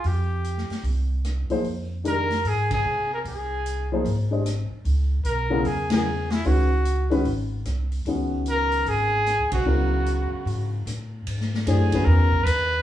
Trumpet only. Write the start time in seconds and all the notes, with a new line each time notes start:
0.07 G4
2.07 A#4
2.48 G#4
2.73 G#4
3.14 A#4
3.28 G#4
5.26 A#4
5.66 G#4
5.92 G#4
6.32 E4
6.47 F#4
8.50 A#4
8.88 G#4
9.52 F#4
11.67 G#4
12.05 A#4
12.44 B4